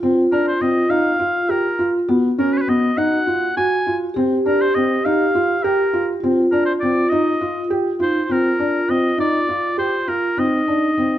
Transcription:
0.00 C4 F4
0.32 D4 A#4
0.48 C5
0.61 C4 D#5
0.90 D#4 F5
1.19 F4
1.49 G4 A#4
1.79 F4
2.09 B3 F#4
2.38 C#4 A#4
2.52 B4
2.58 B4 C#5
2.68 B3 D#5
2.97 D#4 F#5
3.27 F4
3.57 F#4 G#5
3.87 F4
4.14 C4 G4
4.46 D4 A#4
4.61 C5
4.75 C4 D#5
5.05 D#4 F5
5.35 F4
5.63 G4 A#4
5.93 F4
6.20 C4 F4
6.52 D4 A#4
6.65 C5
6.80 C4 D5
7.09 D#4 D#5
7.41 F4
7.70 G4
7.99 D#4 F4 C5
8.24 F4 C5
8.29 C4 A#4
8.59 D4
8.89 C4 D#5
9.18 D#4 D5
9.49 F4
9.78 G4 C5
10.08 F4 A#4
10.37 C4 D#4 D#5
10.68 D4
10.97 C4

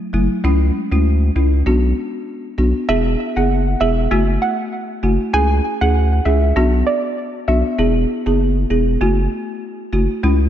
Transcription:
0.13 F#1 F#3 A3 E4
0.44 C#2 G#3 C#4 E4
0.92 D2 G#3 C#4 E4
1.36 C#2 G#3 C#4 E4
1.66 B1 B3 D4 F#4
2.58 B1 B3 D4 F#4
2.89 E1 B3 E4 G#4 E5
3.36 F#1 B3 E4 G#4 F#5
3.81 E1 B3 E4 G#4 E5
4.11 F#1 A3 E4 F#4 E5
4.42 F#5
5.03 F#1 A3 E4 F#4
5.34 C#2 C#4 E4 G#4 G#5
5.81 D2 C#4 E4 G#4 F#5
6.25 C#2 C#4 E4 G#4 E5
6.56 B1 B3 D4 F#4
6.87 D5
7.48 B1 B3 D4 F#4 E5
7.78 E1 B3 E4 G#4
8.26 F#1 B3 E4 G#4
8.70 E1 B3 E4 G#4
9.01 F#1 A3 E4 F#4
9.93 F#1 A3 E4 F#4
10.23 C#2 G#3 C#4 E4

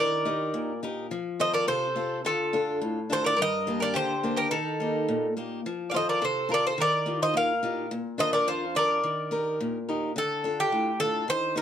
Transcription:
Already playing: D#3
0.00 A#4 D5
0.25 D#4 G4 A#4
0.54 A#2
0.83 D#4 G4 A#4
1.11 F3
1.40 C4 F4 A4 C5 D#5
1.54 A#4 D5
1.67 C3 A4 C5
1.95 C4 F4 A4
2.25 D3 F4 A4
2.53 D4 F4 A4
2.81 A2
3.10 D4 F4 A4 C5
3.24 A#4 D5
3.37 G2 A#4
3.42 D#5
3.67 A#3 D4 G4
3.80 A#4 D5
3.94 D3 G4 C5
4.23 A#3 D4 G4
4.36 G4 A#4
4.51 D#3 D#4 A4
4.80 A#3 D#4 G4
5.08 A#2
5.37 A#3 D#4 G4
5.66 F3
5.90 C4 D5 F5
5.94 F4 A4 C5 D#5
6.09 A#4 D5
6.22 C3 A4 C5
6.49 C4 F4 A4 A#4
6.54 D5
6.67 A4 C5
6.78 D#3 A#4 D5
7.06 D#4 F4 G4
7.22 C5 D#5
7.34 A#2 A#4 F5
7.63 D#4 F4 G4
7.91 A#2
8.18 D4 F4 A#4 C5 D#5
8.33 A#4 D5
8.48 F2 F4 C5
8.75 D4 F4 A#4 D5
9.04 D#3
9.31 D#4 G4 A#4
9.60 A#2
9.89 D#4 G4 A#4
10.16 D3 A4
10.44 D4 F4 A4
10.60 G4
10.72 A2
11.00 D4 F4 A4
11.28 D#3 C5
11.55 D#4 G4 A#4

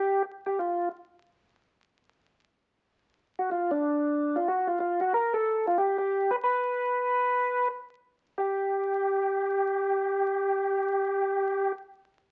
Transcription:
Already playing: G4
0.46 G4
0.59 F4
3.39 F#4
3.51 F4
3.71 D4
4.36 F4
4.48 F#4
4.67 F4
4.80 F4
5.01 F#4
5.14 A#4
5.34 A4
5.67 F4
5.78 G4
5.98 G4
6.31 B4
6.44 B4
8.38 G4

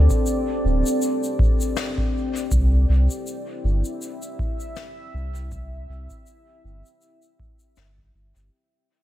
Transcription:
Already playing: C4 G4 A4 D5 G5
0.10 kick, shaker
0.26 shaker
0.64 D1
0.86 shaker
1.02 shaker
1.23 shaker
1.39 kick
1.61 shaker
1.77 snare, shaker
1.98 kick
2.36 shaker
2.52 C2, kick, shaker
2.71 E4
2.89 C2
3.10 shaker
3.27 shaker
3.42 E5
3.64 G1
3.85 shaker
4.02 shaker
4.22 shaker
4.39 kick
4.60 shaker
4.76 snare, shaker
5.14 C2
5.35 shaker
5.52 kick, shaker
5.89 C2
6.10 kick, shaker
6.27 shaker
6.64 G1
6.86 shaker
7.01 shaker
7.22 shaker
7.40 kick
7.59 shaker
7.76 G1, snare, shaker
7.98 kick
8.14 G1
8.36 G1, shaker

